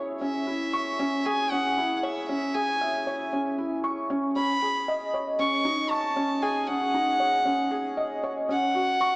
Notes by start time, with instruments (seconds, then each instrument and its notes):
Already playing: felt piano C#4 E4 G#4 C#5 E5
0.21 felt piano C#4, violin E5
0.47 felt piano E4
0.73 felt piano C#6
0.99 felt piano C#4
1.25 felt piano G#4, violin G#5
1.51 felt piano C#4, violin F#5
1.77 felt piano E4
1.97 violin F#5
2.03 felt piano C#5, violin E5
2.29 felt piano C#4, violin E5
2.54 felt piano G#4, violin G#5
2.81 felt piano E5
3.07 felt piano C#5
3.33 felt piano C#4
3.58 felt piano E4
3.84 felt piano C#6
4.10 felt piano C#4
4.36 felt piano C#4, violin B5
4.62 felt piano G#4
4.88 felt piano D#5
5.14 felt piano C#5
5.39 felt piano C#4, violin C#6
5.65 felt piano D#4
5.89 violin A5, felt piano C#6
6.16 felt piano C#4
6.42 felt piano G#4, violin G#5
6.67 felt piano C#4, violin F#5
6.94 felt piano D#4
7.20 felt piano C#5
7.45 felt piano C#4
7.71 felt piano G#4
7.97 felt piano D#5
8.24 felt piano C#5
8.49 felt piano C#4, violin F#5
8.75 felt piano F#4
9.01 felt piano C#6